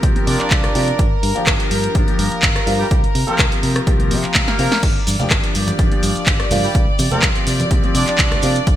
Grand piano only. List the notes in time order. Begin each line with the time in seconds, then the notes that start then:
0.03 F3 A#3 C4 G4
0.15 F3 A#3 C4 G4
0.75 F3 A#3 C4 F4
1.35 F3 A#3 D4 G4
1.95 F3 A#3 D4 G4
2.07 F3 A#3 D4 G4
2.66 F3 A#3 D4 F4
3.27 F3 A#3 C4 G4
3.87 F3 A#3 C4 G4
3.99 F3 A#3 C4 G4
4.59 F3 A#3 C4 F4
5.19 F3 A#3 D4 G4
5.79 F3 A#3 D4 G4
5.91 F3 A#3 D4 G4
6.51 F3 A#3 D4 F4
7.11 F3 A#3 C4 G4
7.71 F3 A#3 C4 G4
7.83 F3 A#3 C4 G4
8.43 F3 A#3 C4 F4